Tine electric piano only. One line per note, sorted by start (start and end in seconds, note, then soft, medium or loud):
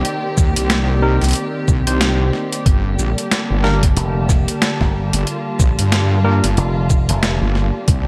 1.02 1.23 C4 loud
1.02 1.23 D#4 medium
1.02 1.23 G4 medium
1.02 1.23 A#4 loud
1.87 2.64 C4 medium
1.87 2.64 D#4 medium
1.87 2.64 G4 medium
1.87 2.64 C5 loud
3.64 3.84 A#3 loud
3.64 3.84 D4 medium
3.64 3.84 G4 medium
3.64 3.84 A#4 loud
6.24 6.45 A#3 medium
6.24 6.45 D4 medium
6.24 6.45 G4 medium
6.24 6.45 A#4 loud